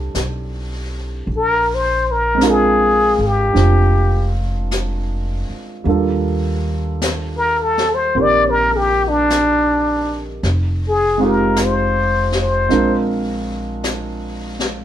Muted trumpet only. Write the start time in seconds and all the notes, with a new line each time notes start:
1.37 A#4
1.74 C5
2.11 A#4
2.50 G#4
3.26 G4
7.37 A#4
7.62 A4
7.94 C5
8.22 D5
8.49 A#4
8.76 G4
9.09 D4
10.88 G#4
11.27 A#4
11.64 C5
12.41 C5